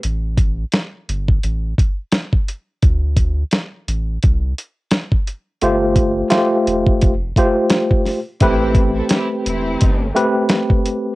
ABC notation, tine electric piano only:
X:1
M:4/4
L:1/8
Q:"Swing 16ths" 1/4=86
K:Am
V:1 name="Tine electric piano"
z8 | z8 | [A,FGc]2 [A,FGc]2 z [A,FGc]2 z | [A,CGB]4- [A,CGB] [A,CGB]3 |]